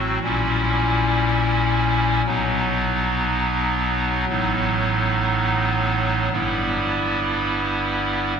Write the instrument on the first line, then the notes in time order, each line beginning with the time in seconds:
pipe organ
Already playing: A1 A2 F#3 C4 F#4
0.24 A#1 A#2 G3 C#4 E4
2.26 B1 B2 F#3 B3 D#4
4.29 A1 A2 F#3 B3 D#4
6.32 G1 G2 G3 B3 E4